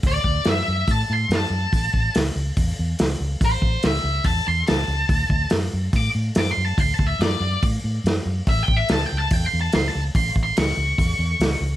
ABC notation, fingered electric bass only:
X:1
M:4/4
L:1/8
Q:1/4=142
K:Amix
V:1 name="Fingered electric bass" clef=bass
D,, D,, F,, F,, A,, A,, F,, F,, | A,,, A,,, C,, C,, E,, E,, C,, C,, | A,,, A,,, C,, C,, E,, E,, C,, C,, | D,, D,, F,, F,, A,, A,, F,, F,, |
D,, D,, F,, F,, A,, A,, F,, F,, | A,,, A,,, C,, C,, E,, E,, C,, C,, | A,,, A,,, C,, C,, E,, E,, C,, C,, |]